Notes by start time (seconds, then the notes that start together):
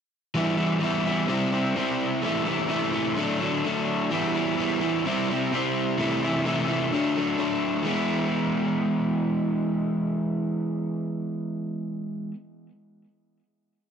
0.34 E3 G3 B3 E4
0.57 G3 B3 E4
0.80 E3 G3 B3 E4
1.05 G3 B3 E4
1.28 C3 G3 C4 E4
1.52 G3 C4 E4
1.75 C3 G3 C4 E4
2.22 C3 E3 A3 E4
2.45 E3 A3 E4
2.69 C3 E3 A3 E4
2.92 E3 A3 E4
3.16 D3 F#3 A3 D4
3.40 F#3 A3 D4
3.64 D3 F#3 A3 D4
4.11 E3 G3 B3 E4
4.33 G3 B3 E4
4.57 E3 G3 B3 E4
4.80 G3 B3 E4
5.05 C3 G3 C4 E4
5.30 G3 C4 E4
5.52 C3 G3 C4 E4
5.98 C3 E3 A3 E4
6.22 E3 A3 E4
6.45 C3 E3 A3 E4
6.68 E3 A3 E4
6.92 D3 F#3 A3 D4
7.16 F#3 A3 D4
7.37 D3 F#3 A3 D4
7.83 E3 G#3 B3 E4